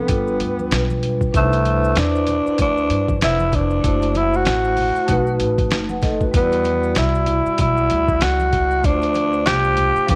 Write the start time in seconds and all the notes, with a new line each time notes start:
0.00 B3
0.07 G1 G3 D4 F4, kick, closed hi-hat, high conga, maracas
0.12 A4
0.18 B4
0.28 maracas
0.40 D2, closed hi-hat, maracas
0.59 high conga, maracas
0.71 B1, snare, closed hi-hat, maracas
0.90 high conga, maracas
1.03 closed hi-hat, low conga, maracas
1.21 kick, maracas
1.31 C2 D4 D#4 B4, kick, closed hi-hat, maracas
1.36 A3 C5
1.41 E4
1.53 closed hi-hat, maracas
1.65 closed hi-hat, high conga, maracas
1.84 maracas
1.96 E2 D4, snare, closed hi-hat, low conga, maracas
2.15 maracas
2.27 closed hi-hat, low conga, maracas
2.46 muted upright bass stroke, maracas
2.58 D2 D4, kick, closed hi-hat, high conga, maracas
2.78 maracas
2.90 G2, closed hi-hat, maracas
3.08 kick, high conga, maracas
3.21 F1 E4, snare, closed hi-hat, maracas
3.39 high conga, maracas
3.52 D4, kick, closed hi-hat, low conga, maracas
3.70 maracas
3.81 F#1 A3 E4 F#4, kick, closed hi-hat, maracas
3.87 C5
4.02 closed hi-hat, maracas
4.15 E4, closed hi-hat, high conga, maracas
4.33 F#4, maracas
4.45 A1, snare, closed hi-hat, low conga, maracas
4.64 maracas
4.77 open hi-hat, low conga, maracas
4.96 muted upright bass stroke, maracas
5.06 B1 A3 D#4 F#4, kick, closed hi-hat, high conga, maracas
5.11 B4
5.27 maracas
5.40 A1, closed hi-hat, maracas
5.58 kick, closed hi-hat, high conga, maracas
5.71 F#1, snare, closed hi-hat, maracas
5.89 B4 F#5, high conga, maracas
6.02 A4 D#5, kick, snare, closed hi-hat, low conga, maracas
6.21 F#4 B4, kick, maracas
6.31 E2 G3 E4 F#4, kick, closed hi-hat, maracas
6.36 B3 D5
6.52 closed hi-hat, maracas
6.65 closed hi-hat, high conga, maracas
6.83 maracas
6.95 C2 E4, snare, closed hi-hat, low conga, maracas
7.15 maracas
7.26 closed hi-hat, low conga, maracas
7.46 muted upright bass stroke, maracas
7.58 B1 E4, kick, closed hi-hat, high conga, maracas
7.77 maracas
7.90 D2, closed hi-hat, maracas
8.08 kick, high conga, maracas
8.21 C#2 F#4, snare, closed hi-hat, maracas
8.40 high conga, maracas
8.53 kick, closed hi-hat, low conga, maracas
8.71 maracas
8.81 D2 A3 D4 F4, kick, closed hi-hat, maracas
8.87 C5
9.02 closed hi-hat, maracas
9.14 closed hi-hat, high conga, maracas
9.33 maracas
9.46 C2 G4, snare, closed hi-hat, low conga, maracas
9.64 maracas
9.77 closed hi-hat, low conga, maracas
9.96 muted upright bass stroke, maracas
10.07 C#2 F3 C#4 D#4 G4, kick, closed hi-hat, high conga, maracas
10.12 B4